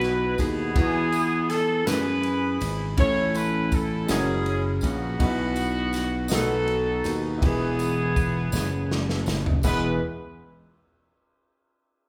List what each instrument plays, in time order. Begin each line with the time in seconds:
Already playing: slap bass B1, grand piano B2 B3 F#4 D#5, horn section E4 F#4 B4
0.01 snare, ride
0.38 slap bass D#2, horn section B3 E4 G#4, kick, ride, tambourine
0.73 slap bass E2, grand piano E3 B3 E4, kick, ride
0.80 grand piano F#4
0.87 grand piano G#5
1.12 ride, tambourine
1.50 horn section A4, snare, ride, tambourine
1.86 slap bass F#2, horn section E4 G#4 B4, snare, ride, tambourine
2.23 ride
2.61 slap bass G#1, ride, tambourine
2.97 slap bass A1, grand piano A2 C#4 E4 A4, horn section E4 A4 C#5, kick, ride
3.35 horn section B4, ride, tambourine
3.72 horn section A4, kick, ride, tambourine
4.06 slap bass F#1, grand piano G#3 C#4 E4 F#4, horn section C#4 G#4, snare, ride, tambourine
4.11 horn section E4, grand piano A#4
4.46 ride
4.81 slap bass A#1, horn section B3 F#4, kick, ride, tambourine
5.18 slap bass B1, grand piano B2 D#4 F#4 B4, kick, ride
5.25 grand piano E4
5.56 ride, tambourine
5.93 snare, ride, tambourine
6.28 slap bass B1, grand piano B2 D#4 F#4, snare, ride, tambourine
6.33 horn section D#4 F#4 A4, grand piano A#4
6.38 grand piano B4
6.68 ride
7.04 slap bass D#2, ride, tambourine
7.38 grand piano E3 E4 G4
7.42 slap bass E1, horn section B3 E4 G#4, grand piano B4, kick, ride
7.48 grand piano G#4
7.79 ride, tambourine
8.16 kick, ride, tambourine
8.52 slap bass F#1, snare, tambourine
8.91 snare
9.09 snare
9.26 slap bass F#1, snare, tambourine
9.46 floor tom
9.63 slap bass E1, grand piano E2 G#3 B3 E4 B4, horn section B4, kick, crash, tambourine